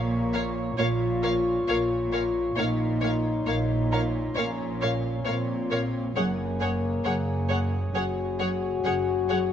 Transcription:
0.00 0.67 A#1 medium
0.00 0.16 A#2 soft
0.00 0.67 A#2 medium
0.00 0.74 A#3 medium
0.00 2.54 F4 soft
0.00 2.09 C#5 soft
0.00 2.54 C#5 soft
0.00 2.08 C#6 soft
0.00 2.54 C#6 soft
0.33 0.60 A#2 soft
0.33 0.42 A#4 soft
0.33 0.42 C#5 soft
0.33 0.41 F5 soft
0.77 1.57 A#1 medium
0.77 1.05 A#2 medium
0.77 1.57 A#2 medium
0.77 2.57 F4 medium
0.77 0.87 A#4 soft
0.77 0.86 C#5 medium
0.77 0.86 F5 soft
1.23 1.50 A#2 soft
1.23 1.31 A#4 soft
1.23 1.31 C#5 soft
1.23 1.31 F5 soft
1.67 2.47 A#1 medium
1.67 2.47 A#2 medium
1.67 1.95 A#2 soft
1.67 1.77 A#4 soft
1.67 1.76 C#5 soft
1.67 1.75 F5 soft
2.12 2.39 A#2 soft
2.12 2.21 A#4 soft
2.12 2.20 C#5 soft
2.12 2.20 F5 soft
2.56 3.37 A#1 medium
2.56 3.36 A#2 medium
2.56 2.84 A#2 medium
2.56 4.36 D#4 medium
2.56 6.12 F4 soft
2.56 2.66 A#4 soft
2.56 2.64 C#5 soft
2.56 6.12 C#5 soft
2.56 2.66 F5 soft
2.56 6.12 C6 soft
3.02 3.29 A#2 soft
3.02 3.11 A#4 soft
3.02 3.10 C#5 soft
3.02 3.11 F5 soft
3.46 4.26 A#1 medium
3.46 4.26 A#2 medium
3.46 3.74 A#2 soft
3.46 3.55 A#4 soft
3.46 3.54 C#5 soft
3.46 3.55 F5 soft
3.91 4.18 A#2 soft
3.91 4.00 A#4 soft
3.91 4.00 C#5 soft
3.91 4.00 F5 soft
3.91 6.57 A#5 soft
4.36 5.15 A#1 medium
4.36 4.63 A#2 medium
4.36 5.15 A#2 medium
4.36 5.26 C#4 medium
4.36 4.45 A#4 soft
4.36 4.44 C#5 soft
4.36 4.45 F5 soft
4.81 5.08 A#2 soft
4.81 4.89 A#4 soft
4.81 4.89 C#5 soft
4.81 4.89 F5 soft
5.25 6.05 A#1 soft
5.25 5.52 A#2 soft
5.25 6.05 A#2 medium
5.25 6.15 C4 medium
5.25 5.34 A#4 soft
5.25 5.33 C#5 soft
5.25 5.34 F5 soft
5.70 5.97 A#2 soft
5.70 5.79 A#4 soft
5.70 5.79 C#5 soft
5.70 5.79 F5 soft
6.15 6.94 F#1 medium
6.15 6.42 F#2 medium
6.15 6.94 F#2 medium
6.15 7.78 A#3 medium
6.15 9.53 G#4 soft
6.15 6.24 G#4 soft
6.15 9.53 C#5 soft
6.15 6.24 C#5 soft
6.15 6.24 F#5 soft
6.15 9.53 G#5 soft
6.60 6.87 F#2 soft
6.60 6.69 G#4 soft
6.60 6.69 C#5 soft
6.60 6.68 F#5 soft
7.04 7.84 F#1 medium
7.04 7.32 F#2 soft
7.04 7.84 F#2 medium
7.04 7.13 G#4 soft
7.04 7.12 C#5 soft
7.04 7.12 F#5 soft
7.49 7.77 F#2 soft
7.49 7.58 G#4 soft
7.49 7.57 C#5 soft
7.49 7.58 F#5 soft
7.94 8.73 F#1 medium
7.94 8.21 F#2 medium
7.94 8.74 F#2 medium
7.94 9.53 F#4 medium
7.94 8.03 G#4 soft
7.94 8.03 C#5 soft
7.94 8.02 F#5 soft
8.40 8.66 F#2 soft
8.40 8.48 G#4 soft
8.40 8.48 C#5 soft
8.40 8.48 F#5 soft
8.84 9.53 F#1 medium
8.84 9.11 F#2 soft
8.84 9.53 F#2 medium
8.84 8.93 G#4 soft
8.84 8.93 C#5 soft
8.84 8.92 F#5 soft
9.29 9.53 F#2 medium
9.29 9.38 G#4 soft
9.29 9.37 C#5 soft
9.29 9.37 F#5 soft

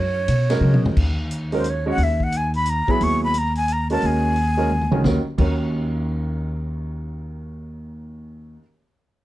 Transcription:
0.00 0.28 F#2 medium
0.00 0.81 C#5 medium
0.28 0.60 B2 medium
0.28 hi-hat pedal medium
0.28 ride medium
0.50 0.94 G#3 medium
0.50 0.94 C#4 medium
0.50 0.94 F#4 medium
0.50 0.95 A#4 medium
0.50 snare soft
0.50 ride medium
0.61 0.73 C#3 medium
0.61 high tom soft
0.73 0.84 B2 soft
0.73 high tom medium
0.85 0.95 F#2 medium
0.85 mid tom medium
0.97 1.95 D#2 medium
0.97 kick medium
0.97 crash medium
1.31 closed hi-hat medium
1.52 1.63 G#3 medium
1.52 1.64 C#4 medium
1.52 1.64 F#4 medium
1.52 1.64 A#4 medium
1.52 open hi-hat soft
1.57 1.71 C5 medium
1.64 closed hi-hat medium
1.70 1.89 C#5 medium
1.86 1.97 G#3 medium
1.86 1.97 C#4 medium
1.86 1.98 F#4 medium
1.86 1.98 C#5 medium
1.86 2.05 F#5 medium
1.98 2.84 D#2 medium
1.98 open hi-hat soft
2.03 2.25 E5 medium
2.20 2.38 F#5 medium
2.20 kick soft
2.32 closed hi-hat medium
2.37 2.55 G#5 medium
2.54 2.71 B5 medium
2.54 open hi-hat soft
2.66 2.92 A#5 medium
2.66 closed hi-hat medium
2.88 3.32 F#3 medium
2.88 3.32 B3 medium
2.88 3.33 E4 medium
2.88 3.33 G#4 medium
2.88 3.05 B5 medium
2.88 muted upright bass stroke soft
2.88 kick medium
3.01 3.99 D#2 medium
3.01 3.23 C#6 loud
3.01 open hi-hat soft
3.24 3.40 B5 medium
3.34 closed hi-hat medium
3.38 3.56 A#5 medium
3.55 3.74 G#5 medium
3.55 open hi-hat soft
3.68 closed hi-hat soft
3.73 3.90 A#5 medium
3.90 4.34 G#3 medium
3.90 4.34 C#4 medium
3.90 4.35 F#4 medium
3.90 4.35 A#4 medium
3.90 4.08 A5 medium
3.90 open hi-hat soft
4.02 4.89 D#2 medium
4.02 open hi-hat soft
4.06 5.00 G#5 medium
4.36 open hi-hat soft
4.57 4.69 G#3 medium
4.57 4.69 C#4 medium
4.57 4.70 F#4 medium
4.57 4.70 A#4 medium
4.69 mid tom soft
4.81 mid tom medium
4.91 5.03 C#2 medium
4.91 5.03 D#3 medium
4.91 5.03 G#3 medium
4.91 5.03 C#4 medium
4.91 5.04 F#4 medium
4.91 5.04 A#4 medium
4.91 mid tom medium
5.04 5.17 D#2 medium
5.04 5.18 D#2 medium
5.04 5.18 D#3 medium
5.04 5.19 C#4 medium
5.04 5.19 F#4 medium
5.04 5.19 A#4 medium
5.04 kick medium
5.04 snare medium
5.38 8.59 D#2 medium
5.38 8.55 D#2 medium
5.38 8.59 D#3 medium
5.38 8.60 C#4 medium
5.38 8.60 F#4 soft
5.38 8.60 A#4 medium
5.38 kick medium
5.38 crash medium

